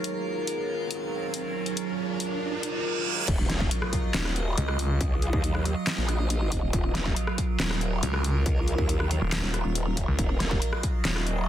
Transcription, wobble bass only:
3.28 3.69 D#1 loud
4.14 4.56 D#1 loud
5.01 5.31 C#2 loud
5.33 5.75 D#2 loud
5.98 6.61 A#1 loud
6.63 6.72 D#1 loud
6.73 7.15 D#1 loud
7.60 8.01 D#1 medium
8.46 8.77 C#2 loud
8.78 9.20 D#2 loud
9.43 9.63 D#1 loud
9.65 10.06 D#1 medium
10.19 10.60 D#1 loud
11.05 11.46 D#1 loud

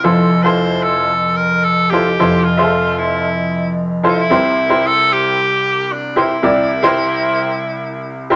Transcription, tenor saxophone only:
0.04 0.44 A4 medium
0.43 0.84 C5 loud
0.83 1.37 A4 medium
1.36 1.65 A#4 medium
1.63 1.91 A4 loud
1.90 2.46 G4 medium
2.44 3.00 F4 medium
2.98 3.78 E4 medium
4.08 4.88 E4 loud
4.86 5.14 A4 loud
5.12 5.94 G4 loud
5.92 6.20 D4 medium
6.19 8.32 E4 medium

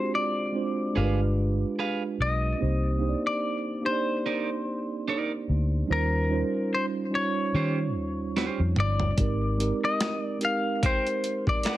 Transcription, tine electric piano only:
0.00 0.52 G#3 medium
0.00 0.54 C4 medium
0.00 0.55 D4 medium
0.00 0.55 F4 medium
0.00 0.98 F#4 medium
0.00 0.43 G4 medium
0.00 0.56 C5 medium
0.52 0.92 G#3 medium
0.52 0.95 C4 medium
0.52 0.94 D4 medium
0.52 0.95 F4 medium
0.52 0.96 C5 medium
0.94 2.27 G#3 medium
0.94 2.28 D4 medium
0.94 2.28 F4 medium
0.94 2.29 G4 medium
0.98 1.04 A#4 medium
1.04 2.32 B4 medium
2.58 2.92 A#3 medium
2.58 2.92 C4 medium
2.58 2.93 D#4 medium
2.58 2.93 G4 medium
2.58 2.94 C5 medium
2.99 3.66 A#3 medium
2.99 3.66 D4 medium
2.99 3.67 D#4 medium
2.99 3.67 G4 medium
2.99 3.09 C5 medium
3.09 3.71 D5 medium
3.82 5.11 A#3 medium
3.82 5.11 D4 medium
3.82 5.12 D#4 medium
3.82 5.12 G4 medium
3.82 3.92 C5 medium
3.92 5.16 D5 medium
5.86 6.21 G3 medium
5.86 6.21 C#4 medium
5.86 6.22 D#4 medium
5.86 6.22 F4 medium
5.86 6.23 C5 medium
6.29 6.96 G3 medium
6.29 6.96 C#4 medium
6.29 6.96 D#4 medium
6.29 6.97 F4 medium
6.29 6.97 C5 medium
7.10 8.39 G3 medium
7.10 8.40 C#4 medium
7.10 8.40 D#4 medium
7.10 8.41 F4 medium
7.10 8.41 C#5 medium
9.17 9.50 G#3 medium
9.17 9.50 C4 medium
9.17 9.51 D#4 medium
9.17 9.51 G4 medium
9.17 9.52 A#4 medium
9.57 10.24 G#3 medium
9.57 10.25 C4 medium
9.57 10.25 D#4 medium
9.57 10.26 G4 medium
9.57 10.26 A#4 medium
10.39 11.68 G#3 medium
10.39 11.68 C4 medium
10.39 11.69 D#4 medium
10.39 11.69 G4 medium
10.39 11.70 A#4 medium

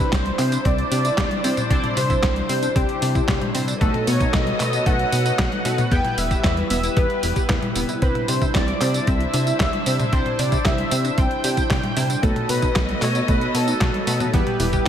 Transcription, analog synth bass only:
0.12 0.31 C2 medium
0.39 0.58 C3 medium
0.65 0.84 C2 loud
0.91 1.10 C3 medium
1.18 1.27 C2 loud
1.44 1.63 C3 loud
1.70 1.80 C2 loud
1.97 2.16 C3 medium
2.23 2.42 C2 medium
2.49 2.68 C3 loud
2.76 2.85 C2 medium
3.02 3.21 C3 medium
3.28 3.38 C2 medium
3.55 3.74 C3 loud
3.81 3.90 B1 loud
4.07 4.26 B2 medium
4.34 4.53 B1 medium
4.60 4.79 B2 loud
4.86 5.05 B1 loud
5.13 5.31 B2 medium
5.39 5.48 B1 loud
5.65 5.84 B2 loud
5.92 6.01 E2 medium
6.18 6.37 E1 medium
6.44 6.63 E2 medium
6.70 6.89 E1 loud
6.97 7.06 E2 medium
7.23 7.33 E1 medium
7.49 7.59 E2 medium
7.76 7.85 E1 medium
8.02 8.12 C2 loud
8.28 8.47 C3 medium
8.55 8.74 C2 medium
8.81 9.00 C3 loud
9.07 9.26 C2 loud
9.34 9.53 C3 medium
9.60 9.69 C2 loud
9.86 10.05 C3 loud
10.13 10.22 C2 loud
10.39 10.58 C3 medium
10.65 10.84 C2 medium
10.92 11.10 C3 loud
11.18 11.27 C2 medium
11.44 11.63 C3 medium
11.70 11.80 C2 medium
11.97 12.16 C3 loud
12.23 12.33 B1 loud
12.49 12.68 B2 medium
12.76 12.95 B1 medium
13.02 13.21 B2 loud
13.28 13.47 B1 loud
13.55 13.74 B2 medium
13.81 13.90 B1 medium
14.07 14.26 B2 loud
14.34 14.43 E2 loud
14.60 14.79 E1 medium

